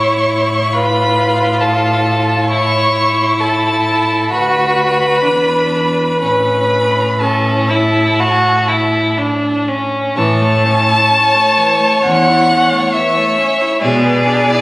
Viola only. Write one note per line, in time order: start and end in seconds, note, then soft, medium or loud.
0.00 0.75 C#5 medium
0.74 1.63 B4 medium
1.61 2.49 A4 medium
2.49 3.42 C#5 medium
3.40 4.32 A4 medium
4.31 6.22 B4 medium
6.23 7.23 B4 medium
7.21 9.69 A4 medium
10.17 10.44 E3 medium
10.42 10.67 A3 medium
10.65 10.90 C#4 medium
10.89 11.12 E4 medium
11.11 11.36 C#4 medium
11.34 11.59 A3 medium
11.57 11.81 E3 medium
11.80 12.03 A3 medium
12.03 12.28 C#4 medium
12.26 12.50 E4 medium
12.49 12.73 C#4 medium
12.71 12.96 A3 medium
12.94 13.18 E3 medium
13.17 13.39 A3 medium
13.38 13.62 C#4 medium
13.61 13.81 E4 medium
13.82 14.06 G#3 medium
14.04 14.28 B3 medium
14.27 14.51 D4 medium
14.49 14.61 E4 medium